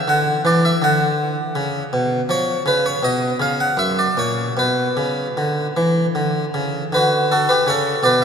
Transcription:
Already playing: E5
0.08 D3 F#5
0.45 E3 D5
0.65 E5
0.82 D3 F#5
1.55 C#3
1.93 B2
2.29 F3 C#5
2.66 C#3 B4
2.86 C#5
3.03 B2 D#5
3.40 C#3 F5
3.60 F#5
3.77 F#2 E5
3.99 D5
4.17 A#2 C#5
4.57 B2 B4
4.97 C#3
5.37 D3
5.77 E3
6.15 D3
6.54 C#3
6.92 D3 F#4 B4
7.32 F#4 A4
7.49 G4 B4
7.67 C#3 A4 C#5
8.03 B2 B4 D5

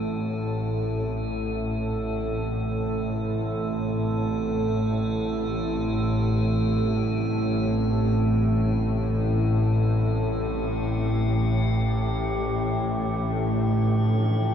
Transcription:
Already playing: A1 A2 C4 E4 A4 E5
3.82 G4
10.44 A3 G4
11.52 D4 A4
11.69 F4

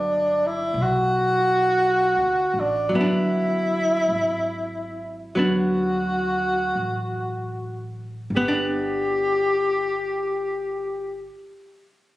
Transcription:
Already playing: G1 F#3 B3 D4
0.46 E4
0.74 B1
0.82 F#4
2.17 D2
2.54 A1
2.60 D4
2.89 G1 F#3
2.95 B3 E4
3.01 D4
4.08 G#1
5.35 D2 F#3 B3 D4
5.42 F#4
6.75 A1
8.30 G1
8.35 B3 G4
8.48 D4

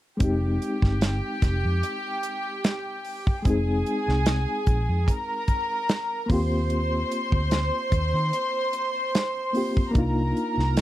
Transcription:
0.17 F1 G#3 C4 G5, kick, closed hi-hat
0.21 D#4 G4
0.62 closed hi-hat
0.82 G1, kick, snare
1.01 snare, closed hi-hat
1.42 F1, kick, snare, closed hi-hat
1.65 F2
1.83 closed hi-hat
2.23 closed hi-hat
2.64 snare, closed hi-hat
3.05 open hi-hat
3.27 kick
3.42 F1 G#3 C4 G#4 G#5, kick, closed hi-hat
3.47 D#4 G#4
3.86 closed hi-hat
4.08 C2, snare
4.26 snare, closed hi-hat
4.67 A#1, kick, closed hi-hat
4.89 F2
5.08 A#4 A#5, kick, closed hi-hat
5.48 kick, closed hi-hat
5.89 snare, closed hi-hat
6.26 D#2 A#3 C4 C5 C6, kick, open hi-hat
6.31 F4 G4
6.70 closed hi-hat
7.11 closed hi-hat
7.32 D2, kick
7.51 snare, closed hi-hat
7.92 D#2, kick, closed hi-hat
8.14 D#3
8.33 closed hi-hat
8.73 closed hi-hat
9.15 snare, closed hi-hat
9.53 A#3 C4 F4, open hi-hat
9.57 G4
9.77 kick
9.91 C2 A#3 D4, kick, closed hi-hat
9.96 D#4 F4 A#4 A#5
10.37 closed hi-hat
10.58 C2, snare
10.77 snare, closed hi-hat

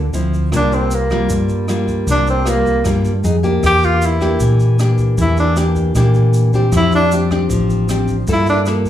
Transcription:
Already playing: D2 D3 D4
0.13 D2 F3 C4 E4, closed hi-hat, shaker
0.33 kick, closed hi-hat, shaker
0.52 C2 C3 G3 A#3 F4, kick, cross-stick, closed hi-hat, shaker
0.56 D4
0.72 C4, closed hi-hat, shaker
0.91 A#3, closed hi-hat, shaker
1.10 G3 A#3 F4, kick, cross-stick, closed hi-hat, shaker
1.29 G2, kick, closed hi-hat, shaker
1.49 closed hi-hat, shaker
1.68 G3 A#3 F4, cross-stick, closed hi-hat, shaker
1.87 kick, closed hi-hat, shaker
2.07 C2 C3, kick, closed hi-hat, shaker
2.11 D4
2.27 C4, closed hi-hat, shaker
2.46 G3 A#3 F4, cross-stick, closed hi-hat, shaker
2.65 kick, closed hi-hat, shaker
2.84 G2 G3 A#3 F4, kick, cross-stick, closed hi-hat, shaker
3.05 closed hi-hat, shaker
3.24 F2 B3 D#4 G#4, closed hi-hat, shaker
3.43 A#3 D4 G4, kick, closed hi-hat, shaker
3.63 E2 E3 G4, kick, cross-stick, closed hi-hat, shaker
3.83 F4, closed hi-hat, shaker
4.02 closed hi-hat, shaker
4.06 E4
4.21 A#3 D4 G4, kick, cross-stick, closed hi-hat, shaker
4.40 A#2 E3, kick, closed hi-hat, shaker
4.60 closed hi-hat, shaker
4.79 A#3 D4 G4, cross-stick, closed hi-hat, shaker
4.98 kick, closed hi-hat, shaker
5.18 E2 E3 E4, kick, closed hi-hat, shaker
5.37 D4, closed hi-hat, shaker
5.56 A#3 D4 G4, cross-stick, closed hi-hat, shaker
5.76 kick, closed hi-hat, shaker
5.95 A#2 E3 A#3 D4 G4, kick, cross-stick, closed hi-hat, shaker
6.14 closed hi-hat, shaker
6.33 closed hi-hat, shaker
6.53 C4 D4 G4, kick, closed hi-hat, shaker
6.72 F2 F3, kick, cross-stick, closed hi-hat, shaker
6.77 E4
6.92 D4, closed hi-hat, shaker
7.11 C4 D4 G4, closed hi-hat, shaker
7.30 C4 D4 G4, kick, cross-stick, closed hi-hat, shaker
7.49 A1 F3, kick, closed hi-hat, shaker
7.70 closed hi-hat, shaker
7.89 C4 D4 G4, cross-stick, closed hi-hat, shaker
8.08 kick, closed hi-hat, shaker
8.27 G2 G3 A#3 F4 A4, kick, closed hi-hat, shaker
8.32 E4
8.47 D4, closed hi-hat, shaker
8.66 A#3 F4 A4, cross-stick, closed hi-hat, shaker
8.85 kick, closed hi-hat, shaker

